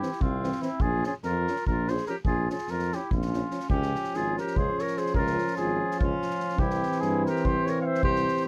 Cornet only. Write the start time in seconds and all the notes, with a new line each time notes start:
Already playing: G4
0.22 F4
0.62 E4
0.81 G#4
1.06 G#4
1.25 A#4
1.67 A#4
1.89 C5
2.07 A#4
2.26 G#4
2.51 G#4
2.70 A#4
2.94 G4
3.13 F4
3.70 G4
4.15 G#4
4.38 A#4
4.57 C5
4.79 C#5
4.97 C5
5.15 A#4
5.57 G#4
6.00 F4
6.59 G4
7.01 G#4
7.26 A#4
7.45 C5
7.66 C#5
7.81 F5
7.86 E5
8.04 C5